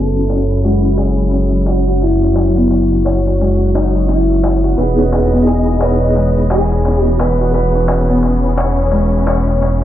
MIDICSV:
0, 0, Header, 1, 7, 480
1, 0, Start_track
1, 0, Key_signature, 4, "minor"
1, 0, Tempo, 689655
1, 1408, Time_signature, 4, 2, 24, 8
1, 6849, End_track
2, 0, Start_track
2, 0, Title_t, "Clean electric guitar"
2, 0, Program_c, 0, 27
2, 0, Note_on_c, 0, 69, 83
2, 448, Note_off_c, 0, 69, 0
2, 451, Note_on_c, 0, 66, 84
2, 686, Note_off_c, 0, 66, 0
2, 689, Note_on_c, 0, 68, 84
2, 1167, Note_off_c, 0, 68, 0
2, 1170, Note_on_c, 0, 66, 77
2, 1409, Note_on_c, 0, 64, 84
2, 1416, Note_off_c, 0, 66, 0
2, 2581, Note_off_c, 0, 64, 0
2, 2611, Note_on_c, 0, 63, 72
2, 2844, Note_off_c, 0, 63, 0
2, 2847, Note_on_c, 0, 64, 78
2, 3325, Note_on_c, 0, 71, 94
2, 3342, Note_off_c, 0, 64, 0
2, 3806, Note_off_c, 0, 71, 0
2, 3809, Note_on_c, 0, 68, 77
2, 4032, Note_off_c, 0, 68, 0
2, 4052, Note_on_c, 0, 71, 80
2, 4530, Note_off_c, 0, 71, 0
2, 4532, Note_on_c, 0, 68, 79
2, 4901, Note_off_c, 0, 68, 0
2, 4901, Note_on_c, 0, 66, 79
2, 5009, Note_off_c, 0, 66, 0
2, 5012, Note_on_c, 0, 71, 78
2, 5241, Note_off_c, 0, 71, 0
2, 5250, Note_on_c, 0, 71, 78
2, 6661, Note_off_c, 0, 71, 0
2, 6849, End_track
3, 0, Start_track
3, 0, Title_t, "Vibraphone"
3, 0, Program_c, 1, 11
3, 0, Control_c, 1, 64, 127
3, 0, Note_on_c, 1, 61, 59
3, 0, Note_on_c, 1, 66, 59
3, 3305, Note_off_c, 1, 61, 0
3, 3311, Note_off_c, 1, 66, 0
3, 3316, Note_on_c, 1, 59, 68
3, 3329, Note_on_c, 1, 63, 59
3, 3336, Control_c, 1, 64, 0
3, 3341, Note_on_c, 1, 64, 59
3, 3355, Note_on_c, 1, 68, 67
3, 3466, Control_c, 1, 64, 127
3, 6849, Note_off_c, 1, 59, 0
3, 6849, Note_off_c, 1, 63, 0
3, 6849, Note_off_c, 1, 64, 0
3, 6849, Note_off_c, 1, 68, 0
3, 6849, End_track
4, 0, Start_track
4, 0, Title_t, "Harp"
4, 0, Program_c, 2, 46
4, 0, Note_on_c, 2, 59, 64
4, 0, Note_on_c, 2, 61, 64
4, 207, Note_on_c, 2, 73, 79
4, 448, Note_on_c, 2, 56, 70
4, 684, Note_off_c, 2, 73, 0
4, 687, Note_on_c, 2, 73, 59
4, 923, Note_off_c, 2, 61, 0
4, 926, Note_on_c, 2, 61, 67
4, 1310, Note_on_c, 2, 66, 61
4, 1547, Note_off_c, 2, 61, 0
4, 1549, Note_on_c, 2, 61, 66
4, 1787, Note_off_c, 2, 59, 0
4, 1790, Note_on_c, 2, 59, 62
4, 2017, Note_off_c, 2, 73, 0
4, 2122, Note_on_c, 2, 73, 85
4, 2358, Note_off_c, 2, 56, 0
4, 2366, Note_on_c, 2, 56, 65
4, 2605, Note_off_c, 2, 73, 0
4, 2608, Note_on_c, 2, 73, 59
4, 2844, Note_off_c, 2, 61, 0
4, 2846, Note_on_c, 2, 61, 62
4, 3006, Note_off_c, 2, 66, 0
4, 3232, Note_on_c, 2, 66, 63
4, 3363, Note_off_c, 2, 56, 0
4, 3465, Note_off_c, 2, 61, 0
4, 3468, Note_on_c, 2, 61, 66
4, 3709, Note_off_c, 2, 59, 0
4, 3712, Note_on_c, 2, 59, 65
4, 3939, Note_off_c, 2, 73, 0
4, 4049, Note_on_c, 2, 73, 81
4, 4288, Note_on_c, 2, 56, 64
4, 4525, Note_off_c, 2, 73, 0
4, 4527, Note_on_c, 2, 73, 60
4, 4765, Note_off_c, 2, 61, 0
4, 4768, Note_on_c, 2, 61, 65
4, 4928, Note_off_c, 2, 66, 0
4, 5154, Note_on_c, 2, 66, 65
4, 5391, Note_off_c, 2, 61, 0
4, 5394, Note_on_c, 2, 61, 64
4, 5632, Note_off_c, 2, 59, 0
4, 5634, Note_on_c, 2, 59, 61
4, 5858, Note_off_c, 2, 73, 0
4, 5971, Note_on_c, 2, 73, 82
4, 6200, Note_off_c, 2, 56, 0
4, 6208, Note_on_c, 2, 56, 65
4, 6447, Note_off_c, 2, 73, 0
4, 6450, Note_on_c, 2, 73, 60
4, 6686, Note_off_c, 2, 61, 0
4, 6689, Note_on_c, 2, 61, 70
4, 6849, Note_off_c, 2, 56, 0
4, 6849, Note_off_c, 2, 59, 0
4, 6849, Note_off_c, 2, 61, 0
4, 6849, Note_off_c, 2, 66, 0
4, 6849, Note_off_c, 2, 73, 0
4, 6849, End_track
5, 0, Start_track
5, 0, Title_t, "String section"
5, 0, Program_c, 3, 48
5, 0, Note_on_c, 3, 54, 67
5, 0, Note_on_c, 3, 64, 64
5, 1392, Note_off_c, 3, 64, 0
5, 1405, Note_on_c, 3, 66, 59
5, 3303, Note_off_c, 3, 54, 0
5, 3307, Note_off_c, 3, 66, 0
5, 3323, Note_on_c, 3, 59, 61
5, 3325, Note_on_c, 3, 52, 66
5, 3327, Note_on_c, 3, 75, 74
5, 5228, Note_off_c, 3, 75, 0
5, 5253, Note_on_c, 3, 61, 71
5, 6849, Note_off_c, 3, 52, 0
5, 6849, Note_off_c, 3, 59, 0
5, 6849, Note_off_c, 3, 61, 0
5, 6849, End_track
6, 0, Start_track
6, 0, Title_t, "Detuned saw bass"
6, 0, Program_c, 4, 39
6, 0, Note_on_c, 4, 30, 83
6, 3308, Note_off_c, 4, 30, 0
6, 3330, Note_on_c, 4, 28, 80
6, 6849, Note_off_c, 4, 28, 0
6, 6849, End_track
7, 0, Start_track
7, 0, Title_t, "Darbuka"
7, 108, Note_on_c, 9, 63, 22
7, 178, Note_off_c, 9, 63, 0
7, 207, Note_on_c, 9, 63, 68
7, 277, Note_off_c, 9, 63, 0
7, 350, Note_on_c, 9, 63, 32
7, 419, Note_off_c, 9, 63, 0
7, 444, Note_on_c, 9, 63, 39
7, 514, Note_off_c, 9, 63, 0
7, 589, Note_on_c, 9, 63, 19
7, 659, Note_off_c, 9, 63, 0
7, 679, Note_on_c, 9, 63, 74
7, 748, Note_off_c, 9, 63, 0
7, 825, Note_on_c, 9, 63, 32
7, 895, Note_off_c, 9, 63, 0
7, 916, Note_on_c, 9, 63, 40
7, 986, Note_off_c, 9, 63, 0
7, 1062, Note_on_c, 9, 63, 22
7, 1131, Note_off_c, 9, 63, 0
7, 1157, Note_on_c, 9, 63, 72
7, 1227, Note_off_c, 9, 63, 0
7, 1302, Note_on_c, 9, 63, 29
7, 1371, Note_off_c, 9, 63, 0
7, 1404, Note_on_c, 9, 63, 43
7, 1474, Note_off_c, 9, 63, 0
7, 1552, Note_on_c, 9, 63, 22
7, 1622, Note_off_c, 9, 63, 0
7, 1640, Note_on_c, 9, 63, 74
7, 1709, Note_off_c, 9, 63, 0
7, 1786, Note_on_c, 9, 63, 37
7, 1856, Note_off_c, 9, 63, 0
7, 1883, Note_on_c, 9, 63, 44
7, 1952, Note_off_c, 9, 63, 0
7, 2030, Note_on_c, 9, 63, 25
7, 2100, Note_off_c, 9, 63, 0
7, 2127, Note_on_c, 9, 63, 69
7, 2197, Note_off_c, 9, 63, 0
7, 2277, Note_on_c, 9, 63, 37
7, 2347, Note_off_c, 9, 63, 0
7, 2375, Note_on_c, 9, 63, 49
7, 2444, Note_off_c, 9, 63, 0
7, 2514, Note_on_c, 9, 63, 21
7, 2583, Note_off_c, 9, 63, 0
7, 2611, Note_on_c, 9, 63, 78
7, 2681, Note_off_c, 9, 63, 0
7, 2752, Note_on_c, 9, 63, 40
7, 2822, Note_off_c, 9, 63, 0
7, 2845, Note_on_c, 9, 63, 50
7, 2914, Note_off_c, 9, 63, 0
7, 2994, Note_on_c, 9, 63, 20
7, 3064, Note_off_c, 9, 63, 0
7, 3087, Note_on_c, 9, 63, 81
7, 3157, Note_off_c, 9, 63, 0
7, 3229, Note_on_c, 9, 63, 36
7, 3298, Note_off_c, 9, 63, 0
7, 3330, Note_on_c, 9, 63, 40
7, 3400, Note_off_c, 9, 63, 0
7, 3470, Note_on_c, 9, 63, 22
7, 3540, Note_off_c, 9, 63, 0
7, 3567, Note_on_c, 9, 63, 77
7, 3637, Note_off_c, 9, 63, 0
7, 3712, Note_on_c, 9, 63, 34
7, 3781, Note_off_c, 9, 63, 0
7, 3811, Note_on_c, 9, 63, 45
7, 3880, Note_off_c, 9, 63, 0
7, 3953, Note_on_c, 9, 63, 26
7, 4022, Note_off_c, 9, 63, 0
7, 4041, Note_on_c, 9, 63, 77
7, 4110, Note_off_c, 9, 63, 0
7, 4194, Note_on_c, 9, 63, 36
7, 4263, Note_off_c, 9, 63, 0
7, 4287, Note_on_c, 9, 63, 47
7, 4356, Note_off_c, 9, 63, 0
7, 4430, Note_on_c, 9, 63, 22
7, 4499, Note_off_c, 9, 63, 0
7, 4525, Note_on_c, 9, 63, 76
7, 4595, Note_off_c, 9, 63, 0
7, 4675, Note_on_c, 9, 63, 37
7, 4744, Note_off_c, 9, 63, 0
7, 4768, Note_on_c, 9, 63, 53
7, 4837, Note_off_c, 9, 63, 0
7, 4917, Note_on_c, 9, 63, 22
7, 4987, Note_off_c, 9, 63, 0
7, 5008, Note_on_c, 9, 63, 80
7, 5077, Note_off_c, 9, 63, 0
7, 5159, Note_on_c, 9, 63, 36
7, 5229, Note_off_c, 9, 63, 0
7, 5249, Note_on_c, 9, 63, 47
7, 5319, Note_off_c, 9, 63, 0
7, 5389, Note_on_c, 9, 63, 21
7, 5459, Note_off_c, 9, 63, 0
7, 5485, Note_on_c, 9, 63, 87
7, 5555, Note_off_c, 9, 63, 0
7, 5627, Note_on_c, 9, 63, 38
7, 5697, Note_off_c, 9, 63, 0
7, 5726, Note_on_c, 9, 63, 45
7, 5796, Note_off_c, 9, 63, 0
7, 5874, Note_on_c, 9, 63, 23
7, 5943, Note_off_c, 9, 63, 0
7, 5969, Note_on_c, 9, 63, 73
7, 6038, Note_off_c, 9, 63, 0
7, 6115, Note_on_c, 9, 63, 31
7, 6185, Note_off_c, 9, 63, 0
7, 6204, Note_on_c, 9, 63, 45
7, 6274, Note_off_c, 9, 63, 0
7, 6353, Note_on_c, 9, 63, 24
7, 6423, Note_off_c, 9, 63, 0
7, 6451, Note_on_c, 9, 63, 70
7, 6521, Note_off_c, 9, 63, 0
7, 6593, Note_on_c, 9, 63, 33
7, 6663, Note_off_c, 9, 63, 0
7, 6698, Note_on_c, 9, 63, 47
7, 6767, Note_off_c, 9, 63, 0
7, 6849, End_track
0, 0, End_of_file